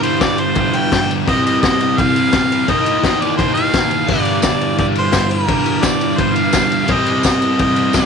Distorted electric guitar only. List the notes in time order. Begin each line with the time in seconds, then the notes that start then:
Already playing: G2 D3 G3
1.27 C3 G3 C4
2.66 D#3 A#3 D#4
4.06 G2 D3 G3
5.47 G2 D3 G3
6.87 C3 G3 C4